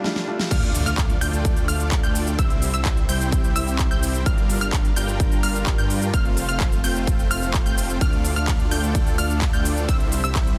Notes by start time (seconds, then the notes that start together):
Already playing: G3 A3 D4 F4, swell
0.03 G3 A3 D4 F4, snare
0.16 snare
0.27 G3 A3 D4 F4
0.39 snare
0.51 D2 D3 A3 D4 F4 A4 D5 F5 F6, kick, closed hi-hat, crash, impact, cabasa
0.63 closed hi-hat
0.75 open hi-hat, cabasa
0.86 D2 A3 D4 F4 D5 F5 F6, closed hi-hat, cabasa
0.98 kick, clap, closed hi-hat, cabasa
1.10 closed hi-hat
1.21 D2 A3 D4 F4 D5 G5 G6, open hi-hat, cabasa
1.33 closed hi-hat, cabasa
1.45 kick, closed hi-hat, cabasa
1.56 closed hi-hat, cabasa
1.68 D2 A3 D4 F4 D5 F5 F6, open hi-hat, cabasa
1.80 closed hi-hat, cabasa
1.92 kick, clap, closed hi-hat, cabasa
2.03 D2 A3 D4 F4 D5 G5 G6, closed hi-hat, cabasa
2.15 open hi-hat, cabasa
2.27 closed hi-hat, cabasa
2.38 C2 C3 G3 C4 E4 G4 C5 E5 E6, kick, closed hi-hat, cabasa
2.50 closed hi-hat
2.62 open hi-hat, cabasa
2.74 C2 G3 C4 E4 C5 E5 E6, closed hi-hat, cabasa
2.85 kick, clap, closed hi-hat, cabasa
2.97 closed hi-hat
3.09 C2 G3 C4 E4 C5 G5 G6, open hi-hat, cabasa
3.21 closed hi-hat, cabasa
3.32 kick, closed hi-hat, cabasa
3.44 closed hi-hat, cabasa
3.56 C2 G3 C4 E4 C5 E5 E6, open hi-hat, cabasa
3.67 closed hi-hat, cabasa
3.79 kick, clap, closed hi-hat, cabasa
3.91 C2 G3 C4 E4 C5 G5 G6, closed hi-hat, cabasa
4.03 open hi-hat, cabasa
4.14 closed hi-hat, cabasa
4.26 G1 G3 D4 F4 A#4 F6, kick, closed hi-hat, cabasa
4.38 closed hi-hat
4.50 open hi-hat, cabasa
4.61 G1 G3 D4 F4 A#4 F5 F6, closed hi-hat, cabasa
4.73 kick, clap, closed hi-hat, cabasa
4.85 closed hi-hat
4.96 G1 G3 D4 F4 A#4 G5 G6, open hi-hat, cabasa
5.08 closed hi-hat, cabasa
5.20 kick, closed hi-hat, cabasa
5.32 closed hi-hat, cabasa
5.43 G1 G3 D4 F4 A#4 F5 F6, open hi-hat, cabasa
5.55 closed hi-hat, cabasa
5.66 kick, clap, closed hi-hat, cabasa
5.78 G2 G3 D4 F4 A#4 G5 G6, closed hi-hat, cabasa
5.90 open hi-hat, cabasa
6.02 closed hi-hat, cabasa
6.13 F1 A3 C4 F4 C5 F5 F6, kick, closed hi-hat, cabasa
6.25 closed hi-hat
6.37 open hi-hat, cabasa
6.49 F1 A3 C4 F4 C5 F5 F6, closed hi-hat, cabasa
6.60 kick, clap, closed hi-hat, cabasa
6.72 closed hi-hat, cabasa
6.84 F1 A3 C4 F4 C5 G5 G6, open hi-hat, cabasa
6.96 closed hi-hat, cabasa
7.07 kick, closed hi-hat, cabasa
7.19 closed hi-hat, cabasa
7.31 F1 A3 C4 F4 C5 F5 F6, open hi-hat, cabasa
7.42 closed hi-hat, cabasa
7.54 kick, clap, closed hi-hat, cabasa
7.66 F1 A3 C4 F4 C5 G5 G6, closed hi-hat, cabasa
7.78 open hi-hat, cabasa
7.89 closed hi-hat, cabasa
8.01 D2 D3 A3 D4 F4 A4 D5 F6, kick, closed hi-hat, ride, cabasa
8.13 closed hi-hat
8.25 open hi-hat, cabasa
8.36 D2 A3 D4 F4 D5 F5 F6, closed hi-hat, cabasa
8.48 kick, clap, closed hi-hat, ride, cabasa
8.60 closed hi-hat
8.71 D2 A3 D4 F4 D5 G5 G6, open hi-hat, cabasa
8.83 closed hi-hat, cabasa
8.95 kick, closed hi-hat, ride, cabasa
9.07 closed hi-hat, cabasa
9.18 D2 A3 D4 F4 D5 F5 F6, open hi-hat, cabasa
9.30 closed hi-hat, cabasa
9.42 kick, clap, closed hi-hat, ride, cabasa
9.53 D2 A3 D4 F4 D5 G5 G6, closed hi-hat, cabasa
9.65 open hi-hat, cabasa
9.77 closed hi-hat, cabasa
9.88 C2 C3 G3 C4 E4 G4 E6, kick, closed hi-hat, ride, cabasa
10.00 closed hi-hat
10.12 open hi-hat, cabasa
10.24 C2 G3 C4 E4 C5 E5 E6, closed hi-hat, cabasa
10.35 kick, clap, closed hi-hat, ride, cabasa
10.47 closed hi-hat